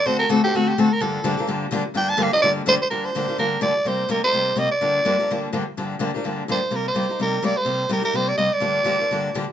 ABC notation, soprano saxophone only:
X:1
M:4/4
L:1/8
Q:"Swing" 1/4=252
K:Gm
V:1 name="Soprano saxophone"
c B A G ^F G A B | A4 z4 | g a f e d z c c | B c3 B2 d2 |
c2 B c3 e d- | d6- d z | z6 c2 | B c3 B2 d c- |
c2 B B c d e d- | d6- d z |]